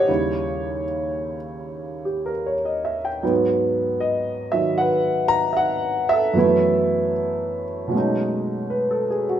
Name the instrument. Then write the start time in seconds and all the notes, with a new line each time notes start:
grand piano
Already playing: G4 G#4 C5 C#5 D#5 F#5
0.08 D#2 C#3 G3 E4
2.05 G4
2.26 A#4
2.46 C#5
2.65 D#5
2.85 E5
3.05 G5
3.23 G#2 F#3 B3
4.00 D#5
4.52 D#3 F#3 E5
4.78 B4 F#5
5.28 A#5
5.53 E5 F#5
6.09 E5
6.13 A4
6.33 F#2 E3 F#3 A3 B3
6.39 E4
7.88 B2 F#3
7.92 G#3 A3
7.96 C#4 D#4
8.70 B4
8.91 A4
9.10 G#4
9.29 F#4